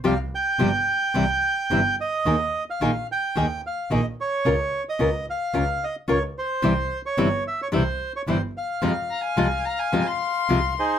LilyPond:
<<
  \new Staff \with { instrumentName = "Violin" } { \time 4/4 \key c \phrygian \tempo 4 = 109 r1 | r1 | r1 | r1 |
r8 bes''16 aes''8. bes''16 aes''8 c'''4.~ c'''16 | }
  \new Staff \with { instrumentName = "Bandoneon" } { \time 4/4 \key c \phrygian f''8 g''2. ees''8~ | ees''8. f''8. g''4 f''8 ees''8 des''8~ | des''8. ees''8. f''4 ees''8 des''8 c''8~ | c''8. des''8. e''16 des''16 c''8. des''16 c''8 f''8~ |
f''2.~ f''8 <ees' aes' c''>8 | }
  \new Staff \with { instrumentName = "Nylon-string guitar" } { \time 4/4 \key c \phrygian <c f g c' g'>8 r8 <c f g c' g'>8 r8 <c e g c' e'>8 r8 <c e g c' e'>8 r8 | <ees bes ees' aes'>8 r8 <ees bes ees' aes'>8 r8 <ees bes ees' aes'>8 r8 <ees bes ees' aes'>8 r8 | <des' f' bes'>8 r8 <des' f' bes'>8 r8 <des' f' bes'>8 r8 <des' f' bes'>8 r8 | <c e g c' e'>8 r8 <c e g c' e'>8 r8 <c e g c' e'>8 r8 <c e g c' e'>8 r8 |
<c f aes c' f'>8 r8 <c f aes c' f'>8 r8 <c f aes c' f'>8 r8 <c f aes c' f'>8 r8 | }
  \new Staff \with { instrumentName = "Double bass" } { \clef bass \time 4/4 \key c \phrygian c,8 r8 g,,8 r8 c,8 r8 g,,8 r8 | ees,8 r8 bes,,8 r8 ees,8 r8 bes,,8 r8 | des,8 r8 des,8 r8 des,8 r8 des,8 r8 | c,8 r8 g,,8 r8 c,8 r8 g,,8 r8 |
f,8 r8 c,8 r8 f,8 r8 c,8 r8 | }
>>